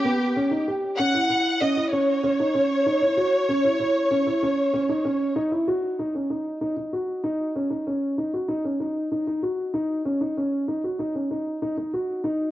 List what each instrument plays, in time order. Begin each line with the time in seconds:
Already playing: violin section G4
0.05 grand piano B3
0.36 grand piano C#4
0.51 grand piano D#4
0.68 grand piano G4
0.98 grand piano C#4, violin section F#5
1.14 grand piano E4
1.30 grand piano E4
1.60 grand piano C#4, violin section D#5
1.77 grand piano E4
1.92 grand piano C#4, violin section C#5
2.24 grand piano C#4
2.40 grand piano D#4
2.55 grand piano C#4
2.86 grand piano D#4
3.02 grand piano E4
3.17 grand piano F#4
3.49 grand piano C#4
3.64 grand piano E4
3.80 grand piano E4
4.11 grand piano C#4
4.27 grand piano E4
4.43 grand piano C#4
4.74 grand piano C#4
4.89 grand piano D#4
5.05 grand piano C#4
5.36 grand piano D#4
5.52 grand piano E4
5.68 grand piano F#4
5.99 grand piano D#4
6.15 grand piano C#4
6.30 grand piano D#4
6.61 grand piano D#4
6.93 grand piano F#4
7.24 grand piano D#4
7.56 grand piano C#4
7.70 grand piano D#4
7.87 grand piano C#4
8.18 grand piano D#4
8.33 grand piano F#4
8.48 grand piano D#4
8.65 grand piano C#4
8.80 grand piano D#4
9.12 grand piano D#4
9.27 grand piano D#4
9.42 grand piano F#4
9.74 grand piano D#4
10.05 grand piano C#4
10.21 grand piano D#4
10.37 grand piano C#4
10.68 grand piano D#4
10.84 grand piano F#4
10.99 grand piano D#4
11.15 grand piano C#4
11.31 grand piano D#4
11.62 grand piano D#4
11.77 grand piano D#4
11.94 grand piano F#4
12.24 grand piano D#4